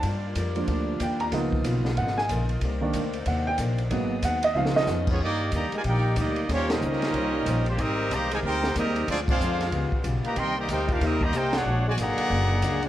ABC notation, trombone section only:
X:1
M:4/4
L:1/8
Q:"Swing" 1/4=186
K:Eb
V:1 name="Trombone section"
z8 | z8 | z8 | z6 z [F,A,_D] |
[G,B,E]2 [D,G,B,] A, [B,EG]2 [G,B,E]2 | [G,B,_D] [G,B,E]6 [_D,G,C] | [G,CE]2 [E,G,B,] [C,E,A,] [CEG]2 [G,CE]2 | [F,A,D] [A,CF]4 z2 B, |
[E,G,C] [E,G,B,] [B,EG] F [G,B,E] [E,G,B,] [B,EG] [A,D_G]- | [A,D_G] [A,,D,A,] [D,^F,B,]4- [D,F,B,] [F,A,^C] |]